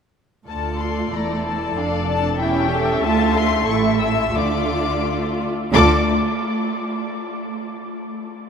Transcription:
0.47 1.08 D2 soft
0.47 1.09 D2 soft
0.47 1.72 A3 soft
0.47 1.08 F4 soft
0.47 1.09 A4 soft
0.47 1.73 D5 soft
0.47 0.78 A5 medium
0.79 1.12 C6 medium
1.11 1.75 E1 soft
1.11 1.75 E2 soft
1.11 1.76 E4 soft
1.11 2.37 A4 soft
1.11 1.45 A#5 medium
1.45 1.76 A5 medium
1.76 2.39 F1 medium
1.76 2.38 F2 medium
1.76 2.40 D4 medium
1.76 2.38 D5 medium
1.76 2.08 F5 medium
2.08 2.39 A5 medium
2.38 3.03 E1 medium
2.38 3.03 E2 medium
2.38 3.02 C#4 medium
2.38 2.71 E4 medium
2.38 3.03 G4 medium
2.38 3.65 E5 medium
2.38 3.01 G5 medium
2.71 3.66 A4 medium
3.03 3.67 D2 medium
3.03 4.34 A3 medium
3.03 3.68 F4 medium
3.03 3.34 A5 medium
3.35 3.68 C6 loud
3.67 4.35 A1 medium
3.67 4.34 A2 medium
3.67 4.35 E4 medium
3.67 4.34 A4 medium
3.67 4.35 E5 medium
3.67 4.02 C#6 medium
4.00 4.35 E6 medium
4.34 5.53 D2 medium
4.34 5.53 D3 medium
4.34 5.50 A3 medium
4.34 5.50 F4 medium
4.34 5.51 F4 medium
4.34 5.53 D5 medium
4.34 5.39 D6 medium
5.72 6.11 D2 medium
5.72 6.11 D3 medium
5.72 6.10 A3 medium
5.72 6.11 F4 medium
5.72 6.11 A4 medium
5.72 6.11 D5 medium
5.72 6.10 D6 loud

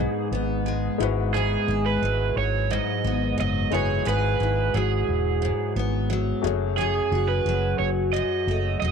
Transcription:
0.00 0.99 G#2 medium
0.00 0.66 G#3 medium
0.00 0.32 B3 medium
0.00 1.02 B3 medium
0.00 1.01 D#4 medium
0.00 1.06 D#4 medium
0.00 0.27 G#4 medium
0.00 1.02 G#4 medium
0.00 1.34 G#4 medium
0.00 1.02 D#5 medium
0.32 0.87 G#1 loud
0.32 3.04 B3 medium
0.66 2.02 G#3 medium
0.98 1.56 G#1 medium
0.98 1.33 G#2 medium
0.98 3.67 G#3 medium
0.98 3.68 E4 medium
0.98 3.68 F#4 medium
0.98 3.69 B4 medium
1.34 2.69 G#2 medium
1.34 1.86 G#4 loud
1.34 3.71 G#4 medium
1.68 1.96 G#1 loud
1.68 4.39 E4 medium
1.86 2.37 B4 loud
2.02 2.30 G#1 medium
2.02 3.37 F#3 medium
2.36 2.78 G#1 loud
2.36 2.72 C#5 loud
2.70 4.04 G#2 medium
2.70 3.39 D#5 loud
3.04 3.32 G#1 loud
3.04 5.75 B3 medium
3.38 3.66 F#1 medium
3.38 4.74 F#3 medium
3.38 3.74 D#5 loud
3.70 4.00 F#1 medium
3.70 6.39 G#3 medium
3.70 6.40 E4 medium
3.70 6.40 F#4 medium
3.70 4.06 G#4 medium
3.70 4.07 C#5 medium
3.75 6.41 B4 medium
4.05 4.34 G#1 loud
4.05 5.41 G#2 medium
4.05 6.78 G#4 medium
4.05 4.77 B4 loud
4.40 4.68 G#1 loud
4.40 6.51 E4 medium
4.74 5.02 G#1 loud
4.74 6.09 F#3 medium
4.74 5.72 G#4 medium
5.08 5.50 E1 medium
5.42 6.44 G#2 medium
5.76 6.31 G#1 loud
5.76 6.51 B3 medium
6.10 6.81 F#3 medium
6.42 6.99 F#1 loud
6.42 6.77 F#2 medium
6.42 8.92 A3 medium
6.42 8.92 F#4 medium
6.42 8.92 G#4 medium
6.42 8.92 C#5 medium
6.77 8.12 F#2 medium
6.77 7.30 G#4 medium
6.77 8.92 G#4 medium
7.12 7.39 F#1 loud
7.12 8.92 F#4 medium
7.28 7.78 B4 loud
7.45 7.73 F#1 medium
7.45 8.82 F#3 medium
7.79 8.21 F#1 medium
7.79 7.88 C#5 loud
8.13 8.92 F#2 medium
8.13 8.77 D#5 loud
8.47 8.75 F#1 loud
8.47 8.92 A3 medium
8.80 8.92 E1 medium
8.80 8.92 F#3 medium
8.80 8.92 D#5 loud

